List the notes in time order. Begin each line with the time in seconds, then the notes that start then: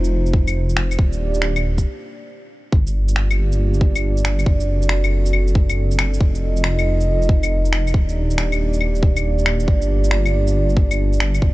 Already playing: F1 A3 C4 D#4 F4 C5
0.04 shaker
0.26 shaker
0.34 kick
0.48 claves, shaker
0.69 shaker
0.77 finger snap
0.91 claves, shaker
0.98 D#1 A#3 D4 G4 D5, kick
1.13 shaker
1.34 shaker
1.42 finger snap
1.56 claves, shaker
1.78 kick, shaker
2.72 G1 A#3 D4 F4 G4 D5, kick
2.87 shaker
3.08 shaker
3.16 finger snap
3.31 claves, shaker
3.52 shaker
3.74 shaker
3.81 kick
3.96 claves, shaker
4.17 shaker
4.25 finger snap
4.39 claves, shaker
4.45 F#1 C4 F#4 A4, kick
4.60 shaker
4.82 shaker
4.89 finger snap
5.04 claves, shaker
5.26 shaker
5.33 claves
5.48 shaker
5.55 kick
5.70 claves, shaker
5.91 shaker
5.99 finger snap, claves
6.14 shaker
6.20 F1 D#4 F4 D#5, kick
6.35 shaker
6.57 shaker
6.64 finger snap
6.79 claves, shaker
7.00 shaker
7.22 shaker
7.29 kick
7.43 claves, shaker
7.65 shaker
7.73 finger snap
7.87 claves, shaker
7.94 D#1 A#3 D4 G4 D5, kick
8.09 shaker
8.30 shaker
8.38 finger snap
8.52 claves, shaker
8.73 shaker
8.81 claves
8.95 shaker
9.03 kick
9.17 claves, shaker
9.38 shaker
9.46 finger snap, claves
9.60 shaker
9.68 G1 F4, kick
9.82 shaker
10.04 shaker
10.11 finger snap
10.26 claves, shaker
10.47 shaker
10.69 shaker
10.77 kick
10.91 claves, shaker
11.13 shaker
11.20 finger snap
11.35 claves, shaker
11.40 F#1 C4 F#4 A4 D5, kick